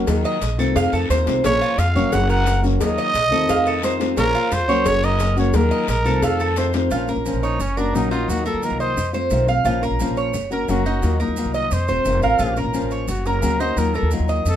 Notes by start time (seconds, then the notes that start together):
0.06 D#2 D#3 F#3 A#3 F4, cowbell, long guiro, maracas
0.25 D#5, maracas
0.41 A#1, muted nylon-string guitar stroke, cowbell, short guiro, maracas
0.58 C2 D#3 A3 C4 F4 A4, short guiro, maracas
0.76 F2 F5, cowbell, long guiro, maracas
0.93 F2 A4, maracas
1.09 D#2 D#3 A3 C4 F4 C5, cowbell, short guiro, maracas
1.26 C2 D#3 A3 C4 F4, cowbell, short guiro, maracas
1.43 A#1 F3 A#3 C#4 F4 C#5, cowbell, long guiro, maracas
1.61 F4, maracas
1.77 F2 F5, muted nylon-string guitar stroke, cowbell, short guiro, maracas
1.95 G1 F#3 A#3 C#4 F#4 C#5, short guiro, maracas
2.12 F#1 F#5, cowbell, long guiro, maracas
2.29 A#4 F#5, maracas
2.46 F#3 A#3 C#4 F#4, cowbell, short guiro, maracas
2.63 F#3 A#3 C#4 F#4, short guiro, maracas
2.80 D#2 D#3 F#3 A#3 F4 D#5, cowbell, long guiro, maracas
2.98 D#5, maracas
3.14 A#1, muted nylon-string guitar stroke, cowbell, short guiro, maracas
3.31 D#2 D#3 A3 C4 F4 A4, short guiro, maracas
3.49 F2 F5, cowbell, long guiro, maracas
3.66 A4, maracas
3.82 D#3 A3 C4 F4 C5, cowbell, short guiro, maracas
4.00 D#3 A3 C4 F4, cowbell, short guiro, maracas
4.16 A#1 F3 A#3 C#4 F4 A#4, cowbell, long guiro, maracas
4.35 F4, maracas
4.51 F2 C5, muted nylon-string guitar stroke, cowbell, short guiro, maracas
4.68 C#2 F#3 A#3 C#4 F#4 C#5, short guiro, maracas
4.86 F#1 C#5, cowbell, long guiro, maracas
5.03 A#4 D#5, maracas
5.19 F#3 A#3 C#4 F#4, cowbell, short guiro, maracas
5.37 F#3 A#3 C#4 F#4 C#5, short guiro, maracas
5.53 D#2 D#3 F#3 A#3 F4 A#4, cowbell, long guiro, maracas
5.71 D#5, maracas
5.88 A#1 A#4, muted nylon-string guitar stroke, cowbell, short guiro, maracas
6.05 C2 D#3 A3 C4 F4 A4, short guiro, maracas
6.22 F2 A4 F5, cowbell, long guiro, maracas
6.39 A4, maracas
6.56 D#3 A3 C4 F4 C5, cowbell, short guiro, maracas
6.73 D#3 A3 C4 F4, cowbell, short guiro, maracas
6.91 A#1 F3 A#3 C#4 F4, maracas
7.08 A#3 C#4 F4 A#4, maracas
7.16 A#1
7.25 F3 A#3 C#4 F4, maracas
7.34 A#1
7.43 D#4 C#5, maracas
7.59 F#1 C#4, muted nylon-string guitar stroke, maracas
7.77 A#3 C#4 D4 F#4 A#4, maracas
7.93 A#1 C#3 F#3 A#3 C#4 D#4 F#4, maracas
8.11 A#3 C#4 D#4 F4 F#4, maracas
8.28 D#2 D#3 F#3 A#3 F4 F#4, maracas
8.45 F#3 A#3 F4 A4 A#4, maracas
8.54 D#2
8.62 D#3 F#3 A#3 F4 A#4, maracas
8.71 C2
8.80 C5 D#5, maracas
8.96 F2, muted nylon-string guitar stroke, maracas
9.13 A3 C4 F4 C5, maracas
9.30 B1 C3 D#3 A3 C4 F4, maracas
9.47 A3 C4 F4 F5, maracas
9.64 A#1 F3 A#3 C#4 F4, maracas
9.82 A#3 C#4 F4 A#4, maracas
9.91 A#1
9.99 F3 A#3 C#4 F4, maracas
10.08 A#1
10.17 C#5, maracas
10.33 F#1, muted nylon-string guitar stroke, maracas
10.51 A#3 C#4 F#4 A#4, maracas
10.68 F#1 C#3 F#3 A#3 C#4 F#4, maracas
10.85 A#3 C#4 D#4 F#4, maracas
11.01 D#2 D#3 F#3 A#3 F4, maracas
11.19 F#3 A#3 D#4 F4 A#4, maracas
11.29 D#2
11.36 D#3 F#3 A#3 F4, maracas
11.45 C2
11.54 D#5, maracas
11.71 F2 C5, muted nylon-string guitar stroke, maracas
11.88 D#1 A3 C4 F4 C5, maracas
12.05 F1 C3 D#3 A3 C4 F4, maracas
12.22 A1 A3 C4 F4 A#4 F5, maracas
12.39 A#1 F3 A#3 C#4 F4, maracas
12.56 A#3 C#4 F4 A#4, maracas
12.65 A#1
12.73 F3 A#3 C#4 F4, maracas
12.82 A1
12.91 C#5, maracas
13.08 F#1 F#4, muted nylon-string guitar stroke, maracas
13.25 A#3 C#4 F#4 A#4, maracas
13.41 D2 C#3 F#3 A#3 C#4 F#4, maracas
13.59 A#3 C#4 D#4 F#4 C5, maracas
13.76 D#2 D#3 F#3 A#3 F4 A#4, maracas
13.94 F#3 A#3 F4 A4 A#4, maracas
14.03 D#2
14.11 D#3 F#3 A#3 F4, maracas
14.20 D#2
14.29 D#5, maracas
14.45 F2 A4, muted nylon-string guitar stroke, maracas